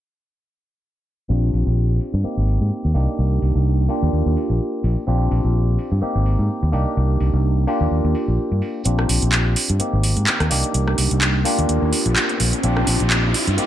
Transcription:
1.29 A#1 C4 D4 F4 G4
1.53 A#1, open hi-hat
1.66 A#1
2.00 open hi-hat
2.14 G2
2.23 A#3 C4 D#4 G4, muted fingered electric bass stroke
2.37 G#1
2.48 open hi-hat
2.61 G#2
2.85 D#2
2.94 C2 A#3 D4 D#4 G4, open hi-hat
3.19 C2
3.42 C2, open hi-hat
3.55 C2
3.89 A#3 D4 F4 G4, open hi-hat
4.02 D#2
4.13 D#2
4.26 D#2
4.37 open hi-hat
4.50 A#1
4.84 A#1, open hi-hat
5.07 A#1 C4 D4 F4 G4
5.31 A#1, open hi-hat
5.44 A#1
5.79 open hi-hat
5.92 G2
6.01 A#3 C4 D#4 G4, muted fingered electric bass stroke
6.15 G#1
6.26 open hi-hat
6.39 G#2
6.63 D#2
6.72 C2 A#3 D4 D#4 G4, open hi-hat
6.97 C2
7.20 C2, open hi-hat
7.33 C2
7.67 A#3 D4 F4 G4, open hi-hat
7.81 D#2
7.91 D#2
8.04 D#2
8.15 open hi-hat
8.28 A#1
8.51 G2
8.62 open hi-hat
8.85 A#1 C4 D4 F4 G4, closed hi-hat, riser
8.99 cross-stick
9.09 A#1, open hi-hat
9.22 A#1, closed hi-hat
9.32 clap, closed hi-hat
9.56 open hi-hat
9.69 G2, closed hi-hat
9.79 A#3 C4 D#4 G4, muted fingered electric bass stroke, closed hi-hat
9.93 G#1
10.03 open hi-hat
10.17 G#2, closed hi-hat
10.27 clap, closed hi-hat
10.40 D#2, cross-stick, closed hi-hat
10.50 C2 A#3 D4 D#4 G4, open hi-hat
10.64 closed hi-hat
10.74 C2, closed hi-hat
10.88 cross-stick
10.98 C2, open hi-hat
11.11 C2, closed hi-hat
11.21 clap, closed hi-hat
11.44 A#3 D4 F4 G4, open hi-hat
11.58 D#2, closed hi-hat
11.69 D#2, closed hi-hat
11.82 D#2
11.93 open hi-hat
12.06 A#1, closed hi-hat
12.16 clap, closed hi-hat
12.29 closed hi-hat
12.40 A#1, open hi-hat
12.53 closed hi-hat
12.63 A#1 C4 D4 F4 G4, closed hi-hat
12.77 cross-stick
12.87 A#1, open hi-hat
13.00 A#1, closed hi-hat
13.10 clap, closed hi-hat
13.34 open hi-hat
13.47 G2, closed hi-hat
13.57 A#3 C4 D#4 G4, muted fingered electric bass stroke, closed hi-hat

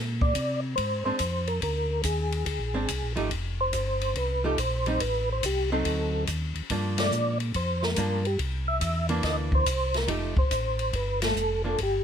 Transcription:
Already playing: A#2
0.21 D5, kick
0.35 C3, kick, hi-hat pedal, ride
0.76 G#2 C5, kick, ride
1.05 G#2 G#3 C4 D4 C5
1.19 F2, kick, hi-hat pedal, ride
1.47 A#4, ride
1.62 D2 A#4, kick, ride
2.03 D#2 G#4, kick, hi-hat pedal, ride
2.32 ride
2.46 D2 G#4, kick, ride
2.59 A#1
2.74 G#1 G#3 C4 D4
2.88 C2, kick, hi-hat pedal, ride
3.02 A#1
3.16 G#1 F3 A3 D#4 G4, ride
3.31 F1, kick, ride
3.61 C5
3.73 G1, kick, hi-hat pedal, ride
4.01 ride
4.15 C2 B4, kick, ride
4.44 F3 A3 D#4 G4 A4
4.58 A#1 C5, kick, hi-hat pedal, ride
4.86 G3 C4 D#4, ride
5.00 A1 B4, kick, ride
5.32 C5
5.43 C2 G4, kick, hi-hat pedal, ride
5.72 F#3 C4 D#4 A4
5.85 D2, kick, ride
6.27 D#2, kick, hi-hat pedal, ride
6.55 D#2, ride
6.70 G2 F3 A#3 D4, kick, ride
6.98 D5, snare, ride
7.11 A#2, hi-hat pedal
7.40 ride
7.54 F2 C5, kick, ride
7.83 A#4, snare
7.96 G2 F3 A#3 D4, kick, hi-hat pedal, ride
8.25 G4, ride
8.39 C2, kick, ride
8.68 E5
8.81 E2, kick, hi-hat pedal, ride
9.09 E3 A#3 D4, ride
9.23 D2 D#5, kick, snare, ride
9.52 C5, kick
9.66 C2, kick, hi-hat pedal, ride
9.94 A#4, snare, ride
10.08 F1 F3 A3 D#4 G4, kick, ride
10.36 F1 C5, kick
10.51 A1, kick, hi-hat pedal, ride
10.79 ride
10.93 G1 B4, kick, ride
11.22 A4, snare, ride
11.35 F1, hi-hat pedal
11.64 F3 A#3 D4
11.69 A4
11.78 G1, kick, ride
11.83 G4

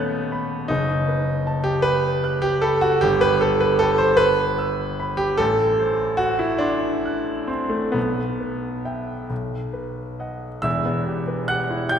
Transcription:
Already playing: D#1 D#2 A3 B3 C#4 D#4 B4 F#5 B5 F#6
0.32 B5
0.68 F#1 D#4
1.09 B4
1.47 A5
1.64 G4
1.82 B4 B5
2.24 F#6
2.42 G4
2.62 A4 B5
2.81 F#4
3.01 G1 G4
3.21 B4
3.41 A4 B4
3.60 B4
3.79 A4 G5
3.98 C5
4.17 B4 B5
4.59 E6
5.00 B5
5.17 G4
5.37 A1 A4
5.79 C5
6.17 F#4 F#5
6.39 E4
6.58 D4 C6
7.06 F#6
7.47 C4 C6
7.69 A3
7.92 B1 B3
8.40 B4
8.85 E5 G5
9.30 B1
9.73 B4
10.20 D#5 F#5
10.62 E1 E2 E5 E6
10.85 B3
11.06 G4
11.28 B4
11.48 G4 F#5 F#6
11.70 E4
11.89 G4 G5 G6

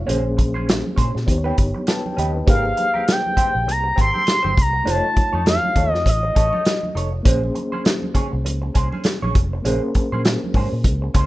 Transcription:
Already playing: F#3
0.06 A#1 A#3 C#4 G#4 C5, closed hi-hat, muted conga, low conga
0.11 C5
0.37 muted clean electric guitar stroke, kick, closed hi-hat, high conga
0.54 C#4 G#4 C5, high conga
0.67 muted clean electric guitar stroke, snare, closed hi-hat
0.86 high conga
0.96 A#2 C#4 G#4 C5, kick, closed hi-hat, low conga
1.15 A#2, muted clean electric guitar stroke, snare
1.25 D#2 B3 D#4, muted clean electric guitar stroke, kick, closed hi-hat, muted conga
1.29 G4 C5
1.38 C#5
1.44 C#4 G4 B4, muted conga
1.57 G1, muted clean electric guitar stroke, kick, closed hi-hat
1.74 muted clean electric guitar stroke, high conga
1.87 B4 G5 A5, muted clean electric guitar stroke, snare, closed hi-hat
2.06 G5, high conga
2.17 D#2 C#4 G4 B4 D#5, closed hi-hat, low conga
2.34 D#4 B4, muted clean electric guitar stroke
2.45 G#1 A#3 C4 G4 A#4, kick, closed hi-hat, muted conga, low conga
2.50 G#4 C5 F5
2.65 muted conga
2.76 muted clean electric guitar stroke, closed hi-hat, high conga
2.94 C4 G4 A#4, high conga
3.07 muted clean electric guitar stroke, snare, closed hi-hat
3.12 G5
3.26 muted conga, high conga
3.37 C4 G4 C5, muted fingered electric bass stroke, kick, closed hi-hat, low conga
3.54 A#1, muted clean electric guitar stroke
3.67 C2, muted clean electric guitar stroke, closed hi-hat, muted conga
3.71 A#5
3.84 muted clean electric guitar stroke
3.96 G#1 C4 G4 A#4, kick, closed hi-hat
4.01 C6
4.13 C4 G4 A#4, high conga
4.27 snare, closed hi-hat
4.43 G1 C4 G4 C5, muted conga, high conga
4.55 C2, muted clean electric guitar stroke, kick, closed hi-hat
4.61 A#5
4.73 muted clean electric guitar stroke
4.84 F1 A3 D#4 F4 A4 C#5, closed hi-hat, muted conga, low conga
4.90 C#5 A5
5.04 muted conga
5.16 muted clean electric guitar stroke, muted fingered electric bass stroke, kick, closed hi-hat, high conga
5.33 F2 D#4 A4 C#5, high conga
5.46 F5, snare, closed hi-hat
5.63 muted conga, high conga
5.76 D#2 D#4 A4 C#5, kick, closed hi-hat, low conga
5.91 F2 D#5, snare
6.06 A1 D#5, muted clean electric guitar stroke, kick, closed hi-hat
6.23 muted clean electric guitar stroke, muted conga
6.35 A1 D#4 A4 C#5, kick, closed hi-hat
6.52 D#4 A4 C#5, high conga
6.65 snare, closed hi-hat
6.83 muted conga, high conga
6.95 F1 D#4 A4 C#5, closed hi-hat
7.12 muted clean electric guitar stroke
7.23 A#1 A#3 C#4 G#4 C5, kick, closed hi-hat, low conga
7.27 G#4 C5
7.43 muted conga
7.54 muted clean electric guitar stroke, closed hi-hat, high conga
7.72 C#4 G#4 C5, high conga
7.85 muted clean electric guitar stroke, snare, closed hi-hat
8.02 high conga
8.14 C#4 G#4 C#5, muted fingered electric bass stroke, kick, closed hi-hat, low conga
8.32 C2, muted clean electric guitar stroke
8.45 C#2, muted clean electric guitar stroke, closed hi-hat, muted conga
8.62 muted clean electric guitar stroke, muted conga
8.75 C2 C#4 G#4 C5, kick, closed hi-hat
8.92 C#4 G#4 C5, high conga
9.04 muted clean electric guitar stroke, snare, closed hi-hat, muted conga
9.22 A#1 C#4 G#4 C#5, muted conga, high conga
9.35 F1, muted clean electric guitar stroke, kick, closed hi-hat
9.53 muted clean electric guitar stroke
9.62 A#1 A#3 C#4 G#4, closed hi-hat, muted conga, low conga
9.66 G#4 A#4 C5
9.95 muted clean electric guitar stroke, muted fingered electric bass stroke, kick, closed hi-hat, high conga
10.12 A#2 C#4 G#4 C5, high conga
10.25 muted clean electric guitar stroke, snare, closed hi-hat, muted conga
10.44 muted conga, high conga
10.54 G#2 C#4 G#4 C5, kick, open hi-hat, low conga
10.72 A#2, muted clean electric guitar stroke
10.84 C#2, kick, closed hi-hat, muted conga
11.02 muted clean electric guitar stroke
11.14 C#2 C#4 G#4 C5, kick, closed hi-hat

